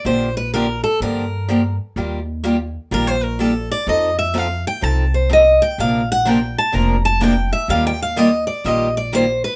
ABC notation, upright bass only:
X:1
M:4/4
L:1/8
Q:"Swing" 1/4=126
K:Eblyd
V:1 name="Upright bass" clef=bass
B,,,4 G,,4 | E,,4 B,,,4 | F,,4 C,,4 | B,,,4 F,,,4 |
E,,4 B,,,4 |]